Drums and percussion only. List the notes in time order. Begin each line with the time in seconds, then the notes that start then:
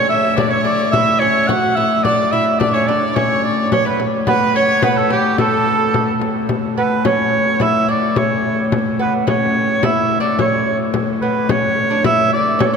0.10 frame drum
0.38 frame drum
0.65 frame drum
0.93 frame drum
1.21 frame drum
1.49 frame drum
1.77 frame drum
2.05 frame drum
2.33 frame drum
2.61 frame drum
2.89 frame drum
3.16 frame drum
3.44 frame drum
3.72 frame drum
4.00 frame drum
4.27 frame drum
4.55 frame drum
4.82 frame drum
5.10 frame drum
5.38 frame drum
5.94 frame drum
6.21 frame drum
6.49 frame drum
6.77 frame drum
7.05 frame drum
7.60 frame drum
7.89 frame drum
8.16 frame drum
8.72 frame drum
9.00 frame drum
9.28 frame drum
9.83 frame drum
10.11 frame drum
10.39 frame drum
10.67 frame drum
10.94 frame drum
11.22 frame drum
11.49 frame drum
12.04 frame drum
12.32 frame drum
12.60 frame drum